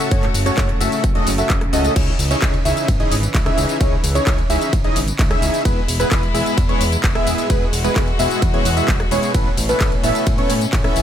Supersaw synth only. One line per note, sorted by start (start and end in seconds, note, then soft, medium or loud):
0.11 0.26 A3 medium
0.11 0.26 C#4 medium
0.11 0.26 F#4 medium
0.11 0.26 C#5 medium
0.46 0.69 A3 loud
0.46 0.69 C#4 medium
0.46 0.69 F#4 medium
0.46 0.69 A4 medium
0.46 0.69 C#5 loud
0.81 1.04 A3 medium
0.81 1.04 C#4 medium
0.81 1.04 F#4 medium
0.81 1.04 A4 medium
0.81 1.04 E5 medium
1.15 1.30 A3 medium
1.15 1.30 C#4 medium
1.15 1.30 F#4 medium
1.15 1.30 A4 medium
1.15 1.30 D#5 loud
1.38 1.53 A3 medium
1.38 1.53 C#4 medium
1.38 1.53 F#4 medium
1.38 1.53 A4 medium
1.38 1.53 E5 medium
1.73 1.93 A3 medium
1.73 1.93 C#4 medium
1.73 1.93 F#4 medium
1.73 1.93 A4 medium
1.73 1.93 D#5 loud
1.96 2.10 C#4 medium
1.96 2.10 D#4 medium
1.96 2.10 E4 medium
1.96 2.10 G#4 medium
1.96 2.10 C#5 loud
2.31 2.54 C#4 loud
2.31 2.54 D#4 medium
2.31 2.54 E4 medium
2.31 2.54 G#4 medium
2.31 2.54 C#5 loud
2.65 2.88 C#4 medium
2.65 2.88 D#4 medium
2.65 2.88 E4 medium
2.65 2.88 G#4 medium
2.65 2.88 E5 medium
3.00 3.14 C#4 medium
3.00 3.14 D#4 medium
3.00 3.14 E4 medium
3.00 3.14 G#4 medium
3.00 3.14 D#5 loud
3.46 3.78 C#4 medium
3.46 3.78 D#4 medium
3.46 3.78 E4 medium
3.46 3.78 G#4 medium
3.46 3.78 E5 medium
3.81 3.95 C#4 medium
3.81 3.95 D#4 medium
3.81 3.95 E4 medium
3.81 3.95 G#4 medium
3.81 3.95 C#5 medium
4.15 4.38 C#4 loud
4.15 4.38 D#4 medium
4.15 4.38 E4 medium
4.15 4.38 G#4 medium
4.15 4.38 C#5 loud
4.50 4.73 C#4 medium
4.50 4.73 D#4 medium
4.50 4.73 E4 medium
4.50 4.73 G#4 medium
4.50 4.73 E5 medium
4.84 4.99 C#4 medium
4.84 4.99 D#4 medium
4.84 4.99 E4 medium
4.84 4.99 G#4 medium
4.84 4.99 D#5 loud
5.31 5.62 C#4 medium
5.31 5.62 D#4 medium
5.31 5.62 E4 medium
5.31 5.62 G#4 medium
5.31 5.62 E5 medium
5.65 5.80 G#3 medium
5.65 5.80 B3 medium
5.65 5.80 E4 medium
5.65 5.80 G#4 medium
5.65 5.80 B4 medium
6.00 6.23 G#3 loud
6.00 6.23 B3 medium
6.00 6.23 E4 medium
6.00 6.23 G#4 medium
6.00 6.23 B4 loud
6.34 6.57 G#3 medium
6.34 6.57 B3 medium
6.34 6.57 E4 medium
6.34 6.57 G#4 medium
6.34 6.57 E5 medium
6.69 6.83 G#3 medium
6.69 6.83 B3 medium
6.69 6.83 E4 medium
6.69 6.83 G#4 medium
6.69 6.83 C#5 loud
7.15 7.47 G#3 medium
7.15 7.47 B3 medium
7.15 7.47 E4 medium
7.15 7.47 G#4 medium
7.15 7.47 E5 medium
7.50 7.64 G#3 medium
7.50 7.64 B3 medium
7.50 7.64 G#4 medium
7.50 7.64 B4 loud
7.84 8.07 G#3 loud
7.84 8.07 B3 medium
7.84 8.07 E4 medium
7.84 8.07 G#4 medium
7.84 8.07 B4 loud
8.19 8.42 G#3 medium
8.19 8.42 B3 medium
8.19 8.42 E4 medium
8.19 8.42 G#4 medium
8.19 8.42 E5 medium
8.54 8.68 G#3 medium
8.54 8.68 B3 medium
8.54 8.68 E4 medium
8.54 8.68 G#4 medium
8.54 8.68 C#5 loud
8.77 8.91 G#3 medium
8.77 8.91 B3 medium
8.77 8.91 E4 medium
8.77 8.91 G#4 medium
8.77 8.91 E5 medium
9.11 9.32 G#3 medium
9.11 9.32 B3 medium
9.11 9.32 E4 medium
9.11 9.32 G#4 medium
9.11 9.32 C#5 loud
9.34 9.49 B3 medium
9.34 9.49 E4 medium
9.34 9.49 B4 loud
9.69 9.92 B3 loud
9.69 9.92 C#4 medium
9.69 9.92 E4 medium
9.69 9.92 A4 medium
9.69 9.92 B4 loud
10.04 10.27 B3 medium
10.04 10.27 C#4 medium
10.04 10.27 E4 medium
10.04 10.27 A4 medium
10.04 10.27 E5 loud
10.38 10.53 B3 medium
10.38 10.53 C#4 medium
10.38 10.53 E4 medium
10.38 10.53 A4 medium
10.38 10.53 C#5 loud
10.84 11.02 B3 medium
10.84 11.02 C#4 medium
10.84 11.02 E4 medium
10.84 11.02 A4 medium
10.84 11.02 E5 medium